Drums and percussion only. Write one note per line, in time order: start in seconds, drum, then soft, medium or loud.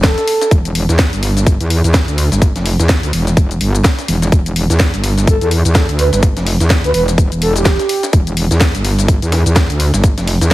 0.03 kick loud
0.03 snare loud
0.03 closed hi-hat medium
0.03 tambourine medium
0.03 shaker medium
0.18 snare soft
0.18 closed hi-hat medium
0.18 shaker soft
0.27 open hi-hat loud
0.27 tambourine medium
0.41 snare soft
0.41 closed hi-hat soft
0.41 shaker medium
0.51 kick loud
0.51 closed hi-hat medium
0.51 tambourine medium
0.51 shaker medium
0.65 closed hi-hat medium
0.65 shaker soft
0.75 open hi-hat loud
0.75 tambourine medium
0.89 snare soft
0.89 closed hi-hat soft
0.89 shaker medium
0.99 kick loud
0.99 snare loud
0.99 closed hi-hat medium
0.99 tambourine medium
0.99 shaker medium
1.13 closed hi-hat medium
1.13 shaker soft
1.23 open hi-hat loud
1.23 tambourine medium
1.37 snare soft
1.37 closed hi-hat soft
1.37 shaker medium
1.46 kick loud
1.46 closed hi-hat medium
1.46 tambourine medium
1.46 shaker medium
1.61 closed hi-hat medium
1.61 shaker soft
1.70 open hi-hat loud
1.70 tambourine medium
1.84 closed hi-hat soft
1.84 shaker medium
1.94 kick loud
1.94 snare loud
1.94 closed hi-hat medium
1.94 tambourine medium
1.94 shaker medium
2.08 closed hi-hat medium
2.08 shaker soft
2.18 open hi-hat loud
2.18 tambourine medium
2.32 snare medium
2.32 closed hi-hat soft
2.32 shaker medium
2.42 kick loud
2.42 closed hi-hat medium
2.42 tambourine medium
2.42 shaker medium
2.56 snare soft
2.56 closed hi-hat medium
2.56 shaker soft
2.66 open hi-hat medium
2.66 open hi-hat loud
2.80 snare soft
2.80 closed hi-hat soft
2.80 shaker medium
2.89 kick loud
2.89 snare loud
2.89 closed hi-hat medium
2.89 tambourine medium
2.89 shaker medium
3.03 closed hi-hat medium
3.03 shaker soft
3.13 open hi-hat loud
3.13 tambourine medium
3.27 snare soft
3.27 closed hi-hat soft
3.27 shaker medium
3.37 kick loud
3.37 closed hi-hat medium
3.37 tambourine medium
3.37 shaker medium
3.51 closed hi-hat medium
3.51 shaker soft
3.61 open hi-hat loud
3.61 tambourine medium
3.75 closed hi-hat soft
3.75 shaker medium
3.84 kick loud
3.84 snare loud
3.84 closed hi-hat medium
3.84 tambourine medium
3.84 shaker medium
3.99 snare soft
3.99 closed hi-hat soft
3.99 shaker soft
4.08 open hi-hat loud
4.08 tambourine medium
4.22 snare soft
4.22 closed hi-hat soft
4.22 shaker medium
4.32 kick loud
4.32 closed hi-hat medium
4.32 tambourine medium
4.32 shaker medium
4.46 closed hi-hat medium
4.46 shaker soft
4.56 open hi-hat loud
4.56 tambourine medium
4.70 snare soft
4.70 closed hi-hat soft
4.70 shaker medium
4.80 kick loud
4.80 snare loud
4.80 closed hi-hat medium
4.80 tambourine medium
4.80 shaker medium
4.94 closed hi-hat soft
4.94 shaker soft
5.04 open hi-hat loud
5.04 tambourine medium
5.18 snare soft
5.18 closed hi-hat soft
5.18 shaker medium
5.27 kick loud
5.27 closed hi-hat medium
5.27 tambourine medium
5.27 shaker medium
5.41 closed hi-hat medium
5.41 shaker soft
5.51 open hi-hat loud
5.51 tambourine medium
5.65 closed hi-hat soft
5.65 shaker medium
5.75 kick loud
5.75 snare loud
5.75 closed hi-hat medium
5.75 tambourine medium
5.75 shaker medium
5.89 closed hi-hat soft
5.89 shaker soft
5.99 open hi-hat loud
5.99 tambourine medium
6.13 snare medium
6.13 closed hi-hat soft
6.13 shaker medium
6.23 kick loud
6.23 closed hi-hat medium
6.23 tambourine medium
6.23 shaker medium
6.37 snare soft
6.37 closed hi-hat medium
6.37 shaker soft
6.46 open hi-hat medium
6.46 open hi-hat loud
6.60 snare soft
6.60 closed hi-hat soft
6.60 shaker medium
6.70 kick loud
6.70 snare loud
6.70 closed hi-hat medium
6.70 tambourine medium
6.70 shaker medium
6.84 closed hi-hat medium
6.84 shaker soft
6.94 open hi-hat loud
6.94 tambourine medium
7.08 snare soft
7.08 closed hi-hat soft
7.08 shaker medium
7.18 kick loud
7.18 closed hi-hat medium
7.18 shaker medium
7.32 closed hi-hat medium
7.32 shaker soft
7.42 open hi-hat loud
7.42 tambourine medium
7.56 closed hi-hat soft
7.56 shaker medium
7.65 kick loud
7.65 snare loud
7.65 closed hi-hat medium
7.65 tambourine medium
7.65 shaker medium
7.79 snare soft
7.79 closed hi-hat medium
7.79 shaker soft
7.89 open hi-hat loud
7.89 tambourine medium
8.03 snare soft
8.03 closed hi-hat soft
8.03 shaker medium
8.13 kick loud
8.13 closed hi-hat medium
8.13 tambourine medium
8.13 shaker medium
8.27 closed hi-hat medium
8.27 shaker soft
8.37 open hi-hat loud
8.37 tambourine medium
8.51 snare soft
8.51 closed hi-hat soft
8.51 shaker medium
8.61 kick loud
8.61 snare loud
8.61 closed hi-hat medium
8.61 tambourine medium
8.61 shaker medium
8.75 closed hi-hat medium
8.75 shaker soft
8.85 open hi-hat loud
8.85 tambourine medium
8.99 snare soft
8.99 closed hi-hat soft
8.99 shaker medium
9.08 kick loud
9.08 closed hi-hat medium
9.08 tambourine medium
9.08 shaker medium
9.22 closed hi-hat medium
9.22 shaker soft
9.32 snare loud
9.32 open hi-hat loud
9.32 tambourine medium
9.46 closed hi-hat soft
9.46 shaker medium
9.56 kick loud
9.56 snare loud
9.56 closed hi-hat medium
9.56 tambourine medium
9.56 shaker medium
9.70 closed hi-hat medium
9.70 shaker soft
9.80 open hi-hat loud
9.80 tambourine medium
9.94 snare medium
9.94 closed hi-hat soft
9.94 shaker medium
10.04 kick loud
10.04 closed hi-hat medium
10.04 tambourine medium
10.04 shaker medium
10.18 snare soft
10.18 closed hi-hat medium
10.18 shaker soft
10.27 open hi-hat medium
10.27 open hi-hat loud
10.41 snare soft
10.41 closed hi-hat soft
10.41 shaker medium